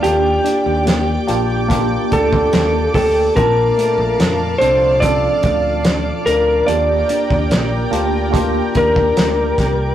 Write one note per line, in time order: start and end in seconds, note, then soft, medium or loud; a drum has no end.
0.00 0.37 D#2 loud
0.00 1.18 A#3 medium
0.00 0.44 D4 medium
0.00 1.19 D4 medium
0.00 1.19 F4 medium
0.00 1.65 G4 medium
0.00 1.19 G4 medium
0.00 9.95 D5 medium
0.00 3.32 G5 medium
0.00 6.63 D6 medium
0.04 closed hi-hat medium
0.44 2.10 D4 medium
0.44 closed hi-hat medium
0.66 1.16 D#2 loud
0.86 1.68 A#3 medium
0.86 snare loud
0.86 closed hi-hat medium
1.27 1.95 A#1 medium
1.27 1.66 A#3 medium
1.27 1.66 D4 medium
1.27 1.67 F4 medium
1.27 2.94 G4 medium
1.27 1.67 G4 medium
1.27 closed hi-hat medium
1.68 3.23 A#3 medium
1.68 2.53 A#3 medium
1.68 3.23 D4 medium
1.68 3.24 F4 medium
1.68 3.25 G4 loud
1.68 kick loud
1.68 closed hi-hat loud
2.11 2.45 D2 medium
2.11 4.60 D4 medium
2.11 2.94 A4 medium
2.11 kick medium
2.11 closed hi-hat medium
2.33 kick loud
2.53 2.86 D#2 medium
2.53 3.77 A#3 medium
2.53 snare loud
2.53 closed hi-hat medium
2.94 3.28 D2 medium
2.94 3.45 G4 medium
2.94 3.36 A4 medium
2.94 kick loud
2.94 snare soft
2.94 open hi-hat medium
3.35 3.70 A#1 loud
3.35 6.68 A#2 medium
3.35 4.51 C4 medium
3.35 4.51 D4 medium
3.35 4.52 F4 medium
3.35 4.58 A#4 medium
3.35 6.65 F5 medium
3.35 6.65 A5 medium
3.35 4.52 A5 medium
3.35 kick loud
3.35 closed hi-hat medium
3.77 5.44 A3 medium
3.77 closed hi-hat medium
3.98 4.15 A#1 loud
4.19 4.53 F2 loud
4.19 5.01 F3 medium
4.19 snare loud
4.19 closed hi-hat medium
4.58 5.27 C2 medium
4.58 4.98 C4 medium
4.58 6.27 D4 medium
4.58 4.99 D4 medium
4.58 4.99 F4 medium
4.58 5.02 C5 loud
4.58 closed hi-hat medium
4.62 5.00 A4 medium
5.00 5.84 F3 medium
5.00 6.56 C4 medium
5.00 5.08 C#4 medium
5.00 6.56 F4 medium
5.00 6.57 A4 medium
5.00 6.30 D5 loud
5.00 kick loud
5.00 closed hi-hat loud
5.08 6.59 D4 medium
5.43 6.10 D2 medium
5.43 kick medium
5.43 closed hi-hat medium
5.85 6.68 F3 medium
5.85 snare loud
5.85 closed hi-hat medium
6.26 6.60 D2 medium
6.26 7.10 D4 medium
6.26 6.69 A#4 medium
6.26 closed hi-hat medium
6.66 7.01 D#2 medium
6.66 7.83 A#3 medium
6.66 7.83 D4 medium
6.66 7.83 F4 medium
6.66 7.84 G4 medium
6.66 9.95 A#4 medium
6.66 8.29 D5 medium
6.66 9.95 G5 medium
6.66 9.95 D6 loud
6.66 closed hi-hat medium
7.09 8.76 D4 medium
7.09 closed hi-hat medium
7.30 7.47 D#2 medium
7.30 kick loud
7.50 7.84 A#1 medium
7.50 8.35 A#3 medium
7.50 snare loud
7.50 closed hi-hat medium
7.91 8.58 D2 medium
7.91 8.30 A#3 medium
7.91 8.30 D4 medium
7.91 8.31 F4 medium
7.91 8.32 G4 medium
7.91 9.59 G4 medium
7.91 closed hi-hat medium
8.31 9.86 A#3 medium
8.31 9.87 D4 medium
8.31 9.87 F4 medium
8.31 9.88 G4 loud
8.31 kick loud
8.31 closed hi-hat loud
8.36 9.18 A#3 medium
8.75 9.09 D#2 loud
8.75 9.95 D4 medium
8.75 9.95 A#4 medium
8.75 kick medium
8.75 closed hi-hat medium
8.96 kick loud
9.17 9.51 D2 medium
9.17 9.95 A#3 medium
9.17 snare loud
9.17 closed hi-hat loud
9.58 9.92 C2 medium
9.58 9.95 G4 medium
9.58 kick medium
9.58 snare soft
9.58 closed hi-hat medium